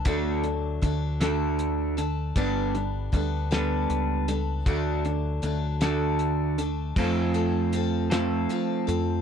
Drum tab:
CC |------|------|------|x-----|
HH |xxxxxx|xxxxxx|xxxxxx|-xxxxx|
SD |---o--|---o--|---o--|---o--|
BD |o-o---|o-o---|o-----|o-----|